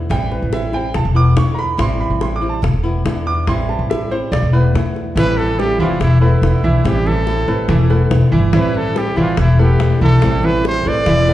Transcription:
0.09 A1 E3 G3 C4 E4 G5, high bongo
0.32 B4, high bongo
0.42 A1
0.52 E3 G3 C4 E4 E5, high bongo
0.73 G3 C4 E4 G5, high bongo
0.94 E1 A5, muted nylon-string guitar stroke, high bongo
1.05 E1
1.15 A3 B3 E4 D6
1.36 E2 D3 A3 B3 E4 C#6, high bongo, low bongo
1.54 A#5
1.58 B5, high bongo
1.77 A1 E3 G3 C4 E4 C6, high bongo
2.01 B5
2.10 A1
2.20 E3 G3 C4 E4 C6, high bongo
2.36 D6
2.41 G3 C4 E4
2.49 A5
2.62 E1, muted nylon-string guitar stroke, high bongo
2.73 E1
2.83 A3 B3 E4
3.04 E2 D3 A3 B3 E4, high bongo, low bongo
3.27 D6
3.47 A1 E3 G3 C4 E4 C6, high bongo
3.69 A5, high bongo
3.79 A1
3.90 E3 G3 C4 E4 E5, high bongo
4.11 G3 C4 E4 C5, high bongo
4.32 E1 D5, muted nylon-string guitar stroke, high bongo
4.42 E1
4.53 A3 B3 E4 B4
4.74 E2 D3 A3 B3 E4, high bongo, low bongo
4.96 high bongo
5.16 A1 E3 G3 C4 E4 B4 E5, high bongo
5.38 A4, high bongo
5.59 E3 G3 C4 E4 G4 A4, high bongo
5.79 F1 E3 G3 C4 E4 F4 E5, high bongo
6.00 E1 E4, muted nylon-string guitar stroke, high bongo
6.21 A3 B3 E4 A4 B4
6.42 E1 D3 A3 B3 E4, high bongo, low bongo
6.63 B1 E3 E4 E5, high bongo
6.84 A1 E3 G3 C4 E4 G4, high bongo
7.07 E3 E4 A4 E5, high bongo
7.27 E3 G3 C4 E4, high bongo
7.48 A1 G3 A3 C4 E4 A4 B4, high bongo
7.68 E1 E3 E4 E5, muted nylon-string guitar stroke, high bongo
7.90 A3 B3 E4 A4 B4, high bongo
8.11 E1 D3 A3 B3 E4, high bongo, low bongo
8.32 G1 E3 E4 E5
8.53 A1 E3 G3 C4 E4 B4 E5, high bongo
8.75 A4, high bongo
8.95 E3 G3 C4 E4 G4 A4, high bongo
9.16 A1 E3 G3 C4 E4 F4 E5, high bongo
9.37 E1 E4, muted nylon-string guitar stroke, high bongo
9.59 A3 B3 E4 G4 A4 B4
9.80 E1 D3 A3 B3 E4, high bongo, low bongo
10.01 B1 E3 E4 A4 E5, high bongo
10.22 A1 E3 G3 C4 E4, high bongo
10.43 E3 E4 B4 E5, high bongo
10.64 E3 G3 C4 E4 C5, high bongo
10.85 A1 G3 A3 C4 E4 A4 B4 D5, high bongo
11.06 E1 E3 E4 E5, muted nylon-string guitar stroke, high bongo
11.27 A3 B3 E4 A4 B4, high bongo

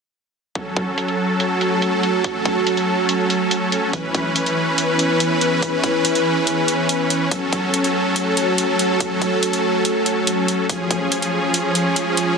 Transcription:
0.55 F#3 C#4 F#4 A4, kick, closed hi-hat
0.72 A4 A5
0.77 C#5, kick, closed hi-hat
0.98 closed hi-hat
1.08 closed hi-hat
1.40 closed hi-hat
1.61 closed hi-hat
1.82 closed hi-hat
2.03 closed hi-hat
2.24 kick, closed hi-hat
2.46 kick, closed hi-hat
2.67 closed hi-hat
2.77 closed hi-hat
3.09 closed hi-hat
3.30 closed hi-hat
3.51 closed hi-hat
3.72 closed hi-hat
3.93 E3 E4 B4, kick, closed hi-hat
4.14 B4, kick, closed hi-hat
4.36 closed hi-hat
4.45 G#5, closed hi-hat
4.78 closed hi-hat
4.99 closed hi-hat
5.20 closed hi-hat
5.41 closed hi-hat
5.62 kick, closed hi-hat
5.84 kick, closed hi-hat
6.05 closed hi-hat
6.15 closed hi-hat
6.47 closed hi-hat
6.68 closed hi-hat
6.89 closed hi-hat
7.10 closed hi-hat
7.31 F#3 F#4 A4, kick, closed hi-hat
7.36 A4
7.53 kick, closed hi-hat
7.68 A5
7.74 closed hi-hat
7.84 closed hi-hat
8.16 closed hi-hat
8.37 closed hi-hat
8.58 closed hi-hat
8.79 closed hi-hat
9.00 kick, closed hi-hat
9.22 kick, closed hi-hat
9.43 closed hi-hat
9.53 closed hi-hat
9.85 closed hi-hat
10.06 closed hi-hat
10.27 closed hi-hat
10.48 closed hi-hat
10.69 F3 C#4 F4 G#4, kick, closed hi-hat
10.87 G#4, kick, closed hi-hat
11.12 closed hi-hat
11.22 closed hi-hat
11.27 G#5
11.54 closed hi-hat
11.75 closed hi-hat
11.96 closed hi-hat
12.17 closed hi-hat

